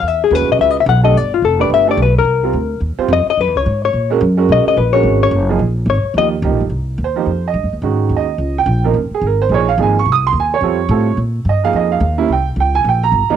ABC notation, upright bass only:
X:1
M:4/4
L:1/8
Q:"Swing" 1/4=215
K:Dblyd
V:1 name="Upright bass" clef=bass
_F,,2 (3E,, D,, _C,, D,,2 C,,2 | G,,,2 F,,,2 G,,,2 =B,,,2 | C,,2 =D,,2 E,, z F,, z | (3_G,, _F,, D,, A,,2 B,,2 G,,2 |
=B,,, z _B,,,2 ^G,,,2 ^F,,,2 | B,,,2 A,,, z E,,2 (3D,, B,,, G,,, | [K:Fm] C,,2 E,,2 F,,2 (3G,, F,, E,, | A,,2 E,,2 D,,2 B,,,2 |
_G,,, z A,,,2 B,,,2 A,,,2 | C,,2 E,,2 F,,2 =A,,2 | B,,2 G,,2 F,,2 E,,2 | C,,2 D,,2 B,,,2 G,,, z |]